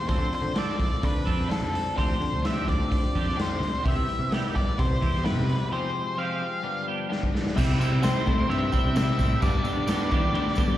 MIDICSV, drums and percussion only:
0, 0, Header, 1, 2, 480
1, 0, Start_track
1, 0, Key_signature, 0, "major"
1, 0, Tempo, 468384
1, 95, Time_signature, 4, 2, 24, 8
1, 6335, Tempo, 461538
1, 11115, End_track
2, 0, Start_track
2, 0, Title_t, "Drums"
2, 86, Note_on_c, 9, 46, 58
2, 92, Note_on_c, 9, 36, 98
2, 188, Note_off_c, 9, 46, 0
2, 194, Note_off_c, 9, 36, 0
2, 334, Note_on_c, 9, 46, 45
2, 437, Note_off_c, 9, 46, 0
2, 570, Note_on_c, 9, 46, 65
2, 574, Note_on_c, 9, 38, 107
2, 672, Note_off_c, 9, 46, 0
2, 676, Note_off_c, 9, 38, 0
2, 813, Note_on_c, 9, 46, 48
2, 815, Note_on_c, 9, 36, 80
2, 916, Note_off_c, 9, 46, 0
2, 918, Note_off_c, 9, 36, 0
2, 1055, Note_on_c, 9, 46, 66
2, 1059, Note_on_c, 9, 36, 100
2, 1157, Note_off_c, 9, 46, 0
2, 1162, Note_off_c, 9, 36, 0
2, 1303, Note_on_c, 9, 36, 81
2, 1308, Note_on_c, 9, 46, 53
2, 1406, Note_off_c, 9, 36, 0
2, 1410, Note_off_c, 9, 46, 0
2, 1432, Note_on_c, 9, 38, 25
2, 1534, Note_off_c, 9, 38, 0
2, 1549, Note_on_c, 9, 46, 66
2, 1553, Note_on_c, 9, 38, 92
2, 1652, Note_off_c, 9, 46, 0
2, 1656, Note_off_c, 9, 38, 0
2, 1793, Note_on_c, 9, 46, 56
2, 1896, Note_off_c, 9, 46, 0
2, 2031, Note_on_c, 9, 36, 103
2, 2035, Note_on_c, 9, 46, 68
2, 2133, Note_off_c, 9, 36, 0
2, 2137, Note_off_c, 9, 46, 0
2, 2270, Note_on_c, 9, 46, 45
2, 2373, Note_off_c, 9, 46, 0
2, 2509, Note_on_c, 9, 46, 68
2, 2513, Note_on_c, 9, 38, 105
2, 2612, Note_off_c, 9, 46, 0
2, 2616, Note_off_c, 9, 38, 0
2, 2750, Note_on_c, 9, 36, 77
2, 2753, Note_on_c, 9, 46, 49
2, 2853, Note_off_c, 9, 36, 0
2, 2855, Note_off_c, 9, 46, 0
2, 2990, Note_on_c, 9, 36, 100
2, 2991, Note_on_c, 9, 46, 66
2, 3092, Note_off_c, 9, 36, 0
2, 3094, Note_off_c, 9, 46, 0
2, 3233, Note_on_c, 9, 36, 70
2, 3240, Note_on_c, 9, 46, 45
2, 3335, Note_off_c, 9, 36, 0
2, 3342, Note_off_c, 9, 46, 0
2, 3366, Note_on_c, 9, 38, 25
2, 3469, Note_off_c, 9, 38, 0
2, 3477, Note_on_c, 9, 46, 61
2, 3481, Note_on_c, 9, 38, 108
2, 3579, Note_off_c, 9, 46, 0
2, 3584, Note_off_c, 9, 38, 0
2, 3717, Note_on_c, 9, 46, 48
2, 3820, Note_off_c, 9, 46, 0
2, 3952, Note_on_c, 9, 36, 105
2, 3952, Note_on_c, 9, 46, 70
2, 4054, Note_off_c, 9, 36, 0
2, 4055, Note_off_c, 9, 46, 0
2, 4187, Note_on_c, 9, 46, 45
2, 4289, Note_off_c, 9, 46, 0
2, 4427, Note_on_c, 9, 46, 62
2, 4431, Note_on_c, 9, 38, 100
2, 4529, Note_off_c, 9, 46, 0
2, 4533, Note_off_c, 9, 38, 0
2, 4672, Note_on_c, 9, 36, 83
2, 4672, Note_on_c, 9, 46, 40
2, 4774, Note_off_c, 9, 46, 0
2, 4775, Note_off_c, 9, 36, 0
2, 4907, Note_on_c, 9, 46, 61
2, 4909, Note_on_c, 9, 36, 110
2, 5009, Note_off_c, 9, 46, 0
2, 5011, Note_off_c, 9, 36, 0
2, 5147, Note_on_c, 9, 46, 50
2, 5149, Note_on_c, 9, 36, 77
2, 5249, Note_off_c, 9, 46, 0
2, 5251, Note_off_c, 9, 36, 0
2, 5279, Note_on_c, 9, 38, 29
2, 5381, Note_off_c, 9, 38, 0
2, 5383, Note_on_c, 9, 46, 64
2, 5387, Note_on_c, 9, 38, 113
2, 5486, Note_off_c, 9, 46, 0
2, 5490, Note_off_c, 9, 38, 0
2, 5627, Note_on_c, 9, 46, 48
2, 5729, Note_off_c, 9, 46, 0
2, 7310, Note_on_c, 9, 38, 57
2, 7414, Note_off_c, 9, 38, 0
2, 7427, Note_on_c, 9, 36, 63
2, 7531, Note_off_c, 9, 36, 0
2, 7552, Note_on_c, 9, 38, 81
2, 7656, Note_off_c, 9, 38, 0
2, 7671, Note_on_c, 9, 38, 76
2, 7775, Note_off_c, 9, 38, 0
2, 7784, Note_on_c, 9, 54, 71
2, 7789, Note_on_c, 9, 36, 115
2, 7791, Note_on_c, 9, 49, 127
2, 7791, Note_on_c, 9, 57, 62
2, 7888, Note_off_c, 9, 54, 0
2, 7893, Note_off_c, 9, 36, 0
2, 7895, Note_off_c, 9, 49, 0
2, 7895, Note_off_c, 9, 57, 0
2, 8027, Note_on_c, 9, 54, 77
2, 8131, Note_off_c, 9, 54, 0
2, 8256, Note_on_c, 9, 54, 91
2, 8269, Note_on_c, 9, 57, 64
2, 8274, Note_on_c, 9, 38, 127
2, 8360, Note_off_c, 9, 54, 0
2, 8373, Note_off_c, 9, 57, 0
2, 8378, Note_off_c, 9, 38, 0
2, 8499, Note_on_c, 9, 54, 28
2, 8511, Note_on_c, 9, 36, 94
2, 8603, Note_off_c, 9, 54, 0
2, 8615, Note_off_c, 9, 36, 0
2, 8758, Note_on_c, 9, 57, 58
2, 8862, Note_off_c, 9, 57, 0
2, 8975, Note_on_c, 9, 54, 69
2, 8992, Note_on_c, 9, 36, 93
2, 9079, Note_off_c, 9, 54, 0
2, 9096, Note_off_c, 9, 36, 0
2, 9221, Note_on_c, 9, 54, 88
2, 9230, Note_on_c, 9, 57, 71
2, 9234, Note_on_c, 9, 38, 117
2, 9325, Note_off_c, 9, 54, 0
2, 9334, Note_off_c, 9, 57, 0
2, 9338, Note_off_c, 9, 38, 0
2, 9462, Note_on_c, 9, 54, 69
2, 9470, Note_on_c, 9, 36, 88
2, 9566, Note_off_c, 9, 54, 0
2, 9574, Note_off_c, 9, 36, 0
2, 9703, Note_on_c, 9, 54, 64
2, 9705, Note_on_c, 9, 57, 62
2, 9709, Note_on_c, 9, 36, 126
2, 9807, Note_off_c, 9, 54, 0
2, 9809, Note_off_c, 9, 57, 0
2, 9813, Note_off_c, 9, 36, 0
2, 9938, Note_on_c, 9, 54, 68
2, 10042, Note_off_c, 9, 54, 0
2, 10175, Note_on_c, 9, 54, 96
2, 10184, Note_on_c, 9, 57, 67
2, 10188, Note_on_c, 9, 38, 114
2, 10279, Note_off_c, 9, 54, 0
2, 10288, Note_off_c, 9, 57, 0
2, 10292, Note_off_c, 9, 38, 0
2, 10419, Note_on_c, 9, 54, 27
2, 10430, Note_on_c, 9, 36, 91
2, 10523, Note_off_c, 9, 54, 0
2, 10534, Note_off_c, 9, 36, 0
2, 10670, Note_on_c, 9, 57, 66
2, 10774, Note_off_c, 9, 57, 0
2, 10802, Note_on_c, 9, 38, 32
2, 10882, Note_on_c, 9, 54, 76
2, 10906, Note_off_c, 9, 38, 0
2, 10909, Note_on_c, 9, 36, 101
2, 10986, Note_off_c, 9, 54, 0
2, 11013, Note_off_c, 9, 36, 0
2, 11115, End_track
0, 0, End_of_file